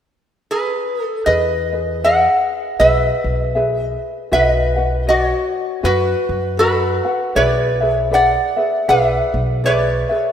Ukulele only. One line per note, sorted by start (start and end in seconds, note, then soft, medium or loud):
1.27 1.72 G#4 medium
1.27 1.72 B4 medium
1.27 1.71 D#5 medium
1.72 2.03 G#4 soft
1.72 2.04 B4 soft
1.72 2.03 D#5 soft
2.04 2.79 G#4 medium
2.04 2.80 B4 medium
2.04 2.79 D#5 medium
2.79 3.55 G#4 medium
2.79 3.56 B4 medium
2.79 3.54 E5 medium
3.55 4.31 G#4 medium
3.55 4.32 B4 medium
3.55 4.31 E5 medium
4.31 4.77 F#4 medium
4.31 4.76 B4 medium
4.31 4.77 D#5 medium
4.31 4.75 F#5 medium
4.76 5.07 F#4 soft
4.76 5.07 B4 soft
4.76 5.07 F#5 soft
5.07 5.82 F#4 medium
5.07 5.83 B4 medium
5.07 5.82 D#5 medium
5.07 5.83 F#5 medium
5.83 6.58 F#4 medium
5.83 6.60 B4 medium
5.83 6.58 D#5 medium
5.83 6.59 F#5 medium
6.59 7.05 F#4 medium
6.59 7.04 B4 medium
6.59 7.05 D#5 medium
6.59 7.03 F#5 medium
7.05 7.35 F#4 soft
7.05 7.35 B4 soft
7.05 7.36 F#5 soft
7.35 7.81 G#4 medium
7.35 7.80 B4 medium
7.35 7.81 D5 medium
7.35 7.79 E5 medium
7.81 8.10 G#4 soft
7.81 8.11 B4 soft
7.81 8.12 E5 soft
8.11 8.57 G#4 medium
8.11 8.56 B4 medium
8.11 8.57 D5 medium
8.11 8.55 E5 medium
8.57 8.87 G#4 soft
8.57 8.88 B4 soft
8.57 8.88 E5 medium
8.88 9.63 G#4 medium
8.88 9.64 B4 medium
8.88 9.62 D5 medium
8.88 9.65 E5 medium
9.64 10.09 G#4 medium
9.64 10.09 B4 medium
9.64 10.09 D5 medium
9.64 10.08 E5 medium
10.09 10.32 G#4 soft
10.09 10.32 B4 soft
10.09 10.32 E5 soft